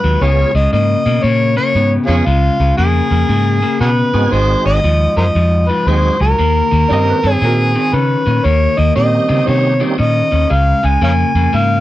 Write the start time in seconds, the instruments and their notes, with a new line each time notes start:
Already playing: harmonica B4
0.04 fingered electric bass D#2, clean electric guitar G#2 F#3
0.21 fingered electric bass C#2, clean electric guitar C#3 G#3, tonewheel organ G#3 B3 C#4 F4 G#4, harmonica C#5
0.54 fingered electric bass C#2, clean electric guitar C#3 G#3, harmonica D#5
0.73 fingered electric bass G#2, clean electric guitar C#3 A#3, harmonica D#5
1.06 fingered electric bass B2, clean electric guitar C#3 A#3
1.23 fingered electric bass A#2, clean electric guitar C#3 A#3, harmonica C#5
1.56 clean electric guitar C#3 A#3, harmonica C#5
1.75 fingered electric bass G#2, clean electric guitar C#3 B3
2.06 fingered electric bass F2, clean electric guitar C#3 B3, tonewheel organ G#3 B3 C#4 F4 G#4, harmonica C#4 F4 G#4
2.26 fingered electric bass C#2, clean electric guitar C#3 G#3, harmonica F4
2.60 fingered electric bass C#2, clean electric guitar C#3 G#3
2.78 fingered electric bass F2, clean electric guitar C#3 A#3, harmonica G#4
3.11 fingered electric bass F2, clean electric guitar C#3 A#3
3.29 fingered electric bass G#2, clean electric guitar C#3 A#3
3.62 clean electric guitar C#3 A#3
3.80 fingered electric bass B2, clean electric guitar C#3 B3, harmonica F#4 G#4 B4
4.14 fingered electric bass G#2, clean electric guitar C#3 B3, tonewheel organ G#3 C4 D#4 F#4 G#4
4.32 fingered electric bass G#1, clean electric guitar G#2 D#3, harmonica C5
4.66 fingered electric bass G#1, clean electric guitar G#2 D#3, harmonica D#5
4.84 fingered electric bass D#2, clean electric guitar G#2 F3
5.16 fingered electric bass F#2, clean electric guitar G#2 F3, harmonica A#4 C5 D#5
5.35 fingered electric bass F2, clean electric guitar G#2 F3
5.69 clean electric guitar G#2 F3, harmonica B4
5.87 fingered electric bass D#2, clean electric guitar G#2 F#3, tonewheel organ G#3 C4 D#4 F#4 G#4, harmonica C5
6.20 fingered electric bass C#2, clean electric guitar G#2 F#3, harmonica A#4
6.38 fingered electric bass D#2, clean electric guitar D#3 A#3
6.71 fingered electric bass D#2, clean electric guitar D#3 A#3
6.88 fingered electric bass G2, clean electric guitar D#3 C4, tonewheel organ G3 A#3 C#4 D#4 G4, upright piano D5
6.93 upright piano D#5
7.10 upright piano B4
7.23 fingered electric bass G2, clean electric guitar D#3 C4, upright piano C#5
7.31 harmonica G#4
7.41 fingered electric bass A#2, clean electric guitar D#3 C4, upright piano F#4 A#4
7.75 clean electric guitar D#3 C4
7.93 fingered electric bass C#3, clean electric guitar D#3 C#4, harmonica B4
8.26 fingered electric bass A#2, clean electric guitar D#3 C#4
8.44 fingered electric bass D#2, clean electric guitar D#3 A#3, harmonica C#5
8.77 fingered electric bass D#2, clean electric guitar D#3 A#3, harmonica D#5
8.95 fingered electric bass A#2, clean electric guitar D#3 C4, tonewheel organ G3 A#3 C#4 D#4 G4, harmonica D#5
9.29 fingered electric bass C#3, clean electric guitar D#3 C4
9.47 fingered electric bass C3, clean electric guitar D#3 C4, harmonica C#5
9.80 clean electric guitar D#3 C4, tonewheel organ G3 A#3 C#4 D#4 G4
9.98 fingered electric bass A#2, clean electric guitar D#3 C#4, harmonica D#5
10.31 fingered electric bass D#2, clean electric guitar D#3 C#4
10.50 fingered electric bass C#2, clean electric guitar C#3 G#3, harmonica F5
10.83 fingered electric bass C#2, clean electric guitar C#3 G#3, harmonica G#5
11.01 fingered electric bass F2, clean electric guitar C#3 A#3, harmonica C#5 F5 G#5
11.35 fingered electric bass F2, clean electric guitar C#3 A#3
11.53 fingered electric bass G#2, clean electric guitar C#3 A#3, harmonica F5